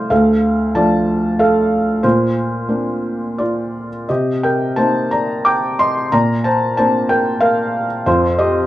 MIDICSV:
0, 0, Header, 1, 2, 480
1, 0, Start_track
1, 0, Tempo, 645161
1, 80, Time_signature, 3, 2, 24, 8
1, 2001, Tempo, 701754
1, 2961, Tempo, 677201
1, 4401, Tempo, 646552
1, 6287, End_track
2, 0, Start_track
2, 0, Title_t, "Felt piano"
2, 0, Program_c, 0, 0
2, 0, Control_c, 0, 64, 127
2, 0, Note_on_c, 0, 36, 47
2, 0, Note_on_c, 0, 53, 35
2, 0, Note_on_c, 0, 57, 33
2, 0, Note_on_c, 0, 62, 40
2, 0, Note_on_c, 0, 65, 51
2, 0, Note_on_c, 0, 69, 47
2, 0, Note_on_c, 0, 72, 63
2, 0, Note_on_c, 0, 74, 60
2, 0, Note_on_c, 0, 77, 61
2, 0, Note_on_c, 0, 79, 64
2, 76, Note_off_c, 0, 77, 0
2, 76, Note_on_c, 0, 77, 72
2, 78, Note_on_c, 0, 38, 55
2, 83, Note_off_c, 0, 69, 0
2, 83, Note_on_c, 0, 69, 52
2, 91, Note_off_c, 0, 62, 0
2, 91, Note_off_c, 0, 79, 0
2, 91, Control_c, 0, 64, 0
2, 93, Note_off_c, 0, 36, 0
2, 93, Note_off_c, 0, 65, 0
2, 94, Note_off_c, 0, 53, 0
2, 94, Note_off_c, 0, 72, 0
2, 95, Note_off_c, 0, 57, 0
2, 96, Note_off_c, 0, 74, 0
2, 230, Control_c, 0, 64, 127
2, 530, Note_off_c, 0, 69, 0
2, 558, Note_on_c, 0, 81, 68
2, 559, Note_on_c, 0, 53, 40
2, 560, Note_on_c, 0, 57, 36
2, 565, Note_on_c, 0, 62, 43
2, 570, Note_on_c, 0, 74, 53
2, 571, Note_off_c, 0, 77, 0
2, 1012, Note_off_c, 0, 74, 0
2, 1037, Note_on_c, 0, 77, 72
2, 1043, Note_on_c, 0, 69, 55
2, 1050, Note_off_c, 0, 81, 0
2, 1484, Note_off_c, 0, 38, 0
2, 1486, Note_off_c, 0, 53, 0
2, 1487, Note_off_c, 0, 57, 0
2, 1489, Note_off_c, 0, 69, 0
2, 1490, Note_off_c, 0, 62, 0
2, 1511, Note_on_c, 0, 72, 65
2, 1516, Note_on_c, 0, 46, 51
2, 1519, Note_on_c, 0, 65, 51
2, 1526, Control_c, 0, 64, 0
2, 1530, Note_off_c, 0, 77, 0
2, 1671, Control_c, 0, 64, 127
2, 1999, Note_on_c, 0, 58, 34
2, 2000, Note_on_c, 0, 60, 31
2, 2002, Note_on_c, 0, 62, 38
2, 2447, Note_off_c, 0, 65, 0
2, 2476, Note_on_c, 0, 74, 59
2, 2485, Note_on_c, 0, 65, 46
2, 2498, Note_off_c, 0, 72, 0
2, 2817, Note_off_c, 0, 74, 0
2, 2822, Note_off_c, 0, 65, 0
2, 2932, Note_off_c, 0, 58, 0
2, 2933, Note_off_c, 0, 60, 0
2, 2934, Note_off_c, 0, 46, 0
2, 2934, Note_off_c, 0, 62, 0
2, 2958, Note_on_c, 0, 75, 60
2, 2963, Note_on_c, 0, 48, 42
2, 2965, Note_on_c, 0, 67, 47
2, 2968, Control_c, 0, 64, 0
2, 3101, Control_c, 0, 64, 127
2, 3190, Note_off_c, 0, 67, 0
2, 3203, Note_on_c, 0, 79, 59
2, 3208, Note_on_c, 0, 70, 48
2, 3211, Note_off_c, 0, 75, 0
2, 3428, Note_off_c, 0, 70, 0
2, 3436, Note_on_c, 0, 81, 67
2, 3441, Note_on_c, 0, 58, 33
2, 3444, Note_on_c, 0, 60, 29
2, 3447, Note_on_c, 0, 72, 50
2, 3449, Note_off_c, 0, 79, 0
2, 3450, Note_on_c, 0, 63, 34
2, 3666, Note_off_c, 0, 72, 0
2, 3683, Note_on_c, 0, 82, 64
2, 3684, Note_off_c, 0, 81, 0
2, 3690, Note_on_c, 0, 74, 46
2, 3910, Note_off_c, 0, 74, 0
2, 3922, Note_on_c, 0, 86, 68
2, 3930, Note_off_c, 0, 82, 0
2, 3932, Note_on_c, 0, 79, 59
2, 4151, Note_off_c, 0, 79, 0
2, 4166, Note_on_c, 0, 84, 74
2, 4170, Note_off_c, 0, 86, 0
2, 4171, Note_on_c, 0, 75, 57
2, 4371, Note_off_c, 0, 58, 0
2, 4372, Note_off_c, 0, 60, 0
2, 4373, Note_off_c, 0, 48, 0
2, 4375, Note_off_c, 0, 63, 0
2, 4388, Note_off_c, 0, 75, 0
2, 4399, Note_on_c, 0, 82, 72
2, 4401, Note_on_c, 0, 46, 50
2, 4406, Note_on_c, 0, 74, 54
2, 4409, Note_off_c, 0, 84, 0
2, 4409, Control_c, 0, 64, 0
2, 4540, Control_c, 0, 64, 127
2, 4630, Note_off_c, 0, 74, 0
2, 4637, Note_on_c, 0, 81, 66
2, 4643, Note_on_c, 0, 72, 53
2, 4650, Note_off_c, 0, 82, 0
2, 4861, Note_off_c, 0, 81, 0
2, 4864, Note_off_c, 0, 72, 0
2, 4882, Note_on_c, 0, 81, 72
2, 4887, Note_on_c, 0, 58, 38
2, 4889, Note_on_c, 0, 60, 35
2, 4889, Note_on_c, 0, 72, 50
2, 4891, Note_on_c, 0, 62, 41
2, 5105, Note_off_c, 0, 72, 0
2, 5120, Note_on_c, 0, 79, 68
2, 5125, Note_off_c, 0, 81, 0
2, 5127, Note_on_c, 0, 70, 48
2, 5346, Note_off_c, 0, 70, 0
2, 5352, Note_on_c, 0, 77, 78
2, 5362, Note_on_c, 0, 70, 53
2, 5367, Note_off_c, 0, 79, 0
2, 5692, Note_off_c, 0, 77, 0
2, 5697, Note_off_c, 0, 70, 0
2, 5811, Note_off_c, 0, 46, 0
2, 5815, Note_off_c, 0, 58, 0
2, 5816, Note_off_c, 0, 60, 0
2, 5817, Note_off_c, 0, 62, 0
2, 5840, Note_on_c, 0, 72, 67
2, 5841, Note_on_c, 0, 41, 56
2, 5849, Note_on_c, 0, 65, 58
2, 5852, Control_c, 0, 64, 0
2, 5966, Control_c, 0, 64, 127
2, 6068, Note_off_c, 0, 65, 0
2, 6079, Note_on_c, 0, 75, 74
2, 6087, Note_off_c, 0, 72, 0
2, 6087, Note_on_c, 0, 67, 58
2, 6287, Note_off_c, 0, 41, 0
2, 6287, Note_off_c, 0, 67, 0
2, 6287, Note_off_c, 0, 75, 0
2, 6287, End_track
0, 0, End_of_file